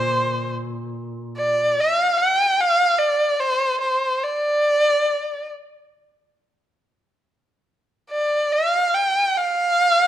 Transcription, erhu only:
0.00 0.52 C5 medium
1.37 1.81 D5 medium
1.80 2.19 F5 medium
2.17 2.62 G5 medium
2.61 3.00 F5 medium
2.98 3.41 D5 medium
3.40 3.80 C5 medium
3.81 4.25 C5 medium
4.23 5.50 D5 medium
8.10 8.54 D5 medium
8.53 8.96 F5 medium
8.94 9.38 G5 medium
9.37 10.07 F5 medium

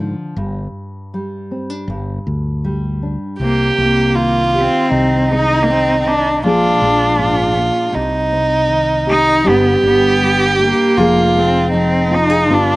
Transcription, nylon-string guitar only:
0.00 0.34 D3 medium
0.00 0.38 F3 soft
0.37 1.84 G2 medium
1.14 1.85 G3 soft
1.51 1.70 C4 soft
1.70 1.89 D4 soft
1.90 3.37 G2 medium
2.65 3.36 G3 soft
3.03 3.36 D4 soft
3.40 4.16 C3 medium
3.78 4.87 A#3 soft
4.16 6.43 D#3 soft
4.54 4.88 G4 soft
4.90 5.67 C3 medium
5.30 6.43 G#3 soft
6.04 6.43 C3 medium
6.43 7.55 A#2 medium
6.43 7.91 F3 medium
6.43 6.81 G#3 medium
6.43 7.91 D4 medium
6.43 7.91 G#4 medium
6.82 7.95 G#3 soft
7.18 7.56 G#2 soft
7.56 7.92 A#2 soft
7.92 8.69 C3 medium
8.32 9.41 C4 soft
8.68 9.44 D#3 medium
9.07 9.41 G4 medium
9.43 10.91 G2 medium
9.43 10.19 G3 medium
9.43 9.82 D4 soft
9.43 10.58 G4 medium
9.83 10.92 D4 medium
10.21 10.92 G3 soft
10.60 10.93 G4 medium
10.97 12.44 F2 medium
10.97 11.72 F3 medium
10.97 11.34 G#3 medium
10.97 12.45 D#4 medium
10.97 12.11 G#4 medium
11.35 12.49 G#3 soft
11.73 12.44 F3 medium
12.11 12.30 F4 medium
12.30 12.49 G#4 soft
12.48 12.76 G2 medium
12.48 12.76 G3 medium
12.48 12.76 B3 medium
12.48 12.76 D4 medium
12.48 12.76 F4 medium

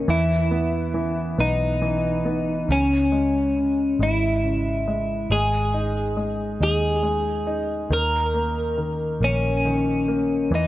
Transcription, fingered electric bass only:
0.08 1.35 E2 medium
1.38 2.65 B1 medium
2.69 3.95 C#2 medium
3.99 5.26 G#1 medium
5.30 6.56 G#1 medium
6.60 7.87 D#2 medium
7.90 9.17 D#2 medium
9.20 10.47 A#1 medium
10.51 10.67 E2 medium

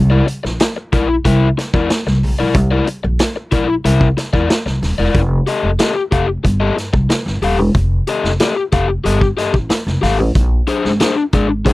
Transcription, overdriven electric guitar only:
0.10 0.25 E4 medium
0.10 0.26 A#4 medium
0.10 0.27 D5 loud
0.27 muted overdriven electric guitar stroke soft
0.44 muted overdriven electric guitar stroke medium
0.61 muted overdriven electric guitar stroke soft
0.76 muted overdriven electric guitar stroke soft
0.93 1.14 E4 medium
0.93 1.09 A#4 medium
0.93 1.08 D5 medium
1.09 muted overdriven electric guitar stroke medium
1.25 1.47 E4 medium
1.25 1.47 A#4 medium
1.25 1.47 E5 medium
1.58 muted overdriven electric guitar stroke soft
1.74 1.89 E4 medium
1.74 1.89 A#4 medium
1.74 1.90 D5 medium
1.90 muted overdriven electric guitar stroke soft
2.07 muted overdriven electric guitar stroke soft
2.39 2.54 E4 medium
2.39 2.55 A#4 medium
2.39 2.55 D5 medium
2.55 muted overdriven electric guitar stroke soft
2.71 2.86 E4 medium
2.71 2.87 A#4 medium
2.71 2.87 D5 medium
2.88 muted overdriven electric guitar stroke soft
3.04 muted overdriven electric guitar stroke soft
3.20 muted overdriven electric guitar stroke soft
3.36 muted overdriven electric guitar stroke soft
3.52 3.73 E4 medium
3.52 3.68 A#4 medium
3.52 3.67 D5 loud
3.68 muted overdriven electric guitar stroke soft
3.85 4.06 E4 medium
3.85 4.07 A#4 medium
3.85 4.07 E5 medium
4.17 muted overdriven electric guitar stroke soft
4.33 4.48 E4 medium
4.33 4.49 A#4 medium
4.33 4.50 D5 medium
4.50 muted overdriven electric guitar stroke soft
4.66 muted overdriven electric guitar stroke soft
4.98 5.21 E4 medium
4.98 5.20 A#4 medium
4.98 5.20 D5 medium
5.47 5.69 G4 medium
5.47 5.69 A4 medium
5.47 5.69 D#5 medium
5.79 6.01 G4 medium
5.79 5.95 A4 medium
5.79 5.94 D#5 loud
5.95 muted overdriven electric guitar stroke soft
6.11 6.29 G4 medium
6.11 6.27 A4 medium
6.11 6.28 F5 medium
6.28 muted overdriven electric guitar stroke soft
6.44 muted overdriven electric guitar stroke soft
6.60 6.76 G4 medium
6.60 6.76 A4 medium
6.60 6.76 D#5 medium
6.77 muted overdriven electric guitar stroke soft
6.93 muted overdriven electric guitar stroke soft
7.10 muted overdriven electric guitar stroke soft
7.42 7.59 G4 medium
7.42 7.59 A4 medium
7.42 7.59 F5 medium
7.59 muted overdriven electric guitar stroke soft
8.08 8.29 G4 medium
8.08 8.30 A4 medium
8.08 8.30 D#5 medium
8.40 8.62 G4 medium
8.40 8.56 A4 medium
8.40 8.55 D#5 medium
8.56 muted overdriven electric guitar stroke medium
8.72 8.89 G4 medium
8.72 8.89 A4 medium
8.72 8.89 F5 medium
8.89 muted overdriven electric guitar stroke soft
9.04 9.26 G4 medium
9.04 9.21 A4 medium
9.04 9.20 D#5 medium
9.21 muted overdriven electric guitar stroke soft
9.37 9.54 G4 medium
9.37 9.54 A4 medium
9.37 9.53 D#5 medium
9.54 muted overdriven electric guitar stroke medium
9.70 muted overdriven electric guitar stroke soft
10.02 10.19 G4 medium
10.02 10.19 A4 medium
10.02 10.19 F5 medium
10.19 muted overdriven electric guitar stroke soft
10.67 10.89 D4 medium
10.67 10.89 G#4 medium
10.67 10.90 C5 loud
11.00 11.22 D4 medium
11.00 11.17 G#4 medium
11.00 11.16 C5 loud
11.17 muted overdriven electric guitar stroke soft
11.33 11.50 D4 medium
11.33 11.49 G#4 medium
11.33 11.49 D5 medium
11.49 muted overdriven electric guitar stroke soft
11.65 11.73 D4 medium
11.65 11.73 G#4 medium
11.65 11.73 C5 medium

